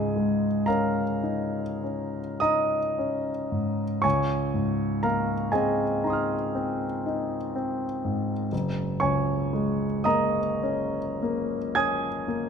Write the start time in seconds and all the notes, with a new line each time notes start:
Already playing: C#2 G#2 G#4 D#5 G#5
0.16 G#3
0.66 C#4 A#4 F5 A#5
1.23 D#4
1.84 C#4
2.40 D#4 D#5 A#5 D#6
2.99 C#4
3.52 G#2
4.02 C#2 C#5 G#5 C#6
4.54 G#2
5.03 A#3 A#4 F5 A#5
5.52 C4 G#4 D#5 G#5
6.04 D#4 A#5 C6
6.10 D#6 F6
6.55 C4
7.06 D#4
7.56 C4
8.05 G#2
8.52 F#1
9.00 C#2 C#5 G#5 C#6
9.53 G#3
10.04 A#3 D#5 A#5 D#6
10.63 C#4
11.23 A#3
11.75 C#4 G#5 D#6 G#6
12.28 A#3